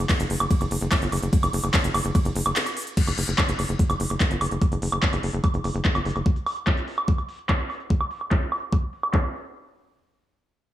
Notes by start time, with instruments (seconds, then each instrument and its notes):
0.09 kick, clap, closed hi-hat, ride, high woodblock
0.20 analog synth bass F#1, closed hi-hat
0.30 analog synth bass F#1, open hi-hat
0.40 analog synth bass F#1, closed hi-hat, high woodblock
0.51 kick, closed hi-hat, ride
0.61 analog synth bass F#1, closed hi-hat, high woodblock
0.71 analog synth bass F#1, open hi-hat
0.81 analog synth bass F#1, closed hi-hat
0.92 kick, clap, closed hi-hat, ride, high woodblock
1.02 analog synth bass G1, closed hi-hat
1.12 analog synth bass F#1, open hi-hat, high woodblock
1.17 closed hi-hat
1.22 analog synth bass F#1, closed hi-hat
1.33 kick, closed hi-hat, ride
1.43 analog synth bass F#1, closed hi-hat, high woodblock
1.53 analog synth bass F#1, open hi-hat
1.64 analog synth bass F#1, closed hi-hat, high woodblock
1.74 kick, clap, closed hi-hat, ride
1.84 analog synth bass F#1, closed hi-hat
1.94 analog synth bass F#1, open hi-hat, high woodblock
2.05 analog synth bass F#1, closed hi-hat
2.15 kick, closed hi-hat, ride, high woodblock
2.25 analog synth bass F#1, closed hi-hat
2.36 analog synth bass F#1, open hi-hat
2.46 analog synth bass F#1, closed hi-hat, high woodblock
2.56 clap, closed hi-hat, ride
2.66 closed hi-hat, high woodblock
2.77 open hi-hat
2.82 closed hi-hat
2.87 closed hi-hat
2.97 kick, closed hi-hat, crash
3.07 analog synth bass F#1, closed hi-hat, high woodblock
3.18 analog synth bass F#1, open hi-hat
3.28 analog synth bass F#1, closed hi-hat
3.38 kick, clap, closed hi-hat, high woodblock
3.49 analog synth bass F#1, closed hi-hat
3.59 analog synth bass F#1, open hi-hat, high woodblock
3.69 analog synth bass F#1, closed hi-hat
3.79 kick, closed hi-hat
3.90 analog synth bass F#1, closed hi-hat, high woodblock
4.00 analog synth bass F#1, open hi-hat
4.10 analog synth bass F#1, closed hi-hat, high woodblock
4.20 kick, clap, closed hi-hat
4.31 analog synth bass G1, closed hi-hat
4.41 analog synth bass F#1, open hi-hat, high woodblock
4.46 closed hi-hat
4.51 analog synth bass F#1, closed hi-hat
4.62 kick, closed hi-hat, high woodblock
4.72 analog synth bass F#1, closed hi-hat
4.82 analog synth bass F#1, open hi-hat
4.92 analog synth bass F#1, closed hi-hat, high woodblock
5.03 kick, clap, closed hi-hat
5.13 analog synth bass F#1, closed hi-hat, high woodblock
5.23 analog synth bass F#1, open hi-hat
5.33 analog synth bass F#1, closed hi-hat
5.44 kick, closed hi-hat, high woodblock
5.54 analog synth bass F#1, closed hi-hat
5.64 analog synth bass F#1, open hi-hat, high woodblock
5.75 analog synth bass F#1, closed hi-hat
5.85 kick, clap, closed hi-hat
5.95 analog synth bass G1, closed hi-hat, high woodblock
6.05 analog synth bass F#1, open hi-hat
6.11 closed hi-hat
6.16 analog synth bass F#1, closed hi-hat, high woodblock
6.26 kick, closed hi-hat
6.36 closed hi-hat
6.46 open hi-hat, high woodblock
6.57 closed hi-hat
6.67 kick, clap, closed hi-hat, high woodblock
6.77 closed hi-hat
6.88 open hi-hat
6.98 closed hi-hat, high woodblock
7.08 kick, closed hi-hat
7.18 closed hi-hat, high woodblock
7.29 open hi-hat
7.39 closed hi-hat
7.49 kick, clap, closed hi-hat, high woodblock
7.59 closed hi-hat
7.70 open hi-hat, high woodblock
7.75 closed hi-hat
7.80 closed hi-hat
7.90 kick, closed hi-hat
8.01 closed hi-hat, high woodblock
8.11 open hi-hat
8.21 closed hi-hat, high woodblock
8.31 kick, clap
8.42 closed hi-hat
8.52 open hi-hat, high woodblock
8.62 closed hi-hat
8.73 kick, closed hi-hat, high woodblock
8.83 closed hi-hat
8.93 open hi-hat
9.03 closed hi-hat, high woodblock
9.14 kick, clap
9.24 high woodblock
9.34 open hi-hat
9.39 closed hi-hat
9.44 closed hi-hat